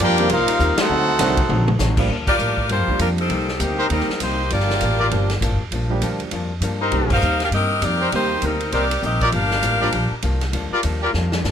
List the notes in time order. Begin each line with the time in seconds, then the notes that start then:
Already playing: F3 G3 A#3 D4 G4
0.00 F2 G2 F3 A#3 D4 F4 G4 A#4 D5 G5
0.18 D#3 G3 A#3 C4 G4, ride
0.29 C2 C3 G3 A#3 D#4 F4 A#4 C5 F5, ride
0.48 muted upright bass stroke, ride
0.59 D#2 C3 G3 A#3 D#4, hi-hat pedal
0.78 A3 C4 D#4 F#4 A4 C5 F#5, snare, ride
0.89 D2 D3 F#3 C4 D#4
1.19 C2 D3 D#3 F#3 A3 C4 D4 D#4 F#4, snare, hi-hat pedal, ride
1.37 kick, ride
1.49 A#1 D3 F#3 C4 D#4, mid tom
1.68 mid tom
1.78 A1 D3 F#3 C4 D#4, snare, hi-hat pedal
1.97 F3 G3 A#3 D4 F4, kick, crash
2.09 D2 G2 F3 A#3 D4
2.27 F4 G4 A#4 D5, kick, crash
2.39 G2 A2 F3 A#3 D4, hi-hat pedal
2.57 kick
2.69 G2 F3 A#3 D4 F4 G4 C5, ride
2.79 F2
2.87 D2 F3 G3 A#3 D4 G4, kick
2.99 F2 G2 F3 G3 A#3 D4 F4 A#4, hi-hat pedal, ride
3.18 G3 C4 D#4 A4, ride
3.29 C2 C3 G3 A#3 D#4, ride
3.48 snare
3.60 D2 C3 G3 A#3 C4 D#4 G4, hi-hat pedal, ride
3.78 D#4 G4 A#4 C5
3.90 D#2 C3 D#3 G3 A#3 C4 D#4 G4 A#4, ride
4.00 snare
4.09 muted upright bass stroke, snare
4.20 C2 C3 G3 A#3 D#4 G4 C5, hi-hat pedal, ride
4.50 G1 G2 F3 A#3 D4 F4 G4 D5, ride
4.60 snare
4.70 snare
4.81 A1 G2 F3 A#3 D4, hi-hat pedal, ride
4.99 F4 G4 A#4 D5
5.11 G1 G2 F3 G3 A#3 D4 G4, ride
5.30 snare, ride
5.41 A1 G2 F3 A#3 D4, hi-hat pedal, ride
5.51 G1
5.61 F1
5.71 A#1 G2 F3 A#3, ride
5.75 D4
5.90 F3 G3 A#3 D4 G4
6.01 D2 G2 F3 A#3 D4, hi-hat pedal, ride
6.20 ride
6.31 F2 G2 F3 A#3 D4, ride
6.61 G2 F3 A#3 D4, hi-hat pedal, ride
6.80 D#4 G4 A#4 C5
6.91 C2 C3 D#3 G3 A#3 C4 D#4 G4, ride
7.01 A#1
7.10 G1 D#4 A#4 C5 F5, kick, crash
7.21 D#2 C3 G3 A#3 D#4, hi-hat pedal
7.40 D4 G4 A#4, snare, ride
7.44 F5
7.51 G2 C3 G3 A#3 C4 G4 A#4 D#5, ride
7.55 D#4
7.81 F2 C3 G3 A#3 C4 D#4 G4 A#4 D5, hi-hat pedal, ride
8.00 D#4 G4 A#4 C5
8.12 D#2 C3 D#3 G3 A#3 C4 D#4 G4 C5, ride
8.42 D2 C3 G3 A#3 C4 D#4 A#4, hi-hat pedal, ride
8.46 G3 D#4
8.60 ride
8.72 C2 C3 G3 A#3 C4 D#4 G4 A#4 C5 D5, ride
8.91 ride
9.02 A#1 C3 G3 A#3 C4 D#4 G4 A#4 D#5, hi-hat pedal
9.21 F4 G4 A#4 D5, kick, ride
9.32 G1 G2 F3 A#3 D4 G4 A#4 F5, ride
9.51 snare
9.63 A1 G2 F3 A#3 D4, hi-hat pedal, ride
9.80 F3 G3 A#3 D4 F4 G4 A#4 D5
9.92 A#1 G2 F3 A#3 D4, ride
10.11 muted upright bass stroke
10.22 C2 G2 F3 A#3 D4, hi-hat pedal, ride
10.41 snare, ride
10.52 D2 G2 F3 A#3 D4, ride
10.71 F4 G4 A#4 D5, muted upright bass stroke
10.83 D#2 G2 F3 A#3 D4, hi-hat pedal, ride
11.01 F4 G4 A#4 D5
11.12 F2 G2 F3 A#3 D4, snare
11.32 snare
11.43 G2 F3 A#3 D4, snare, hi-hat pedal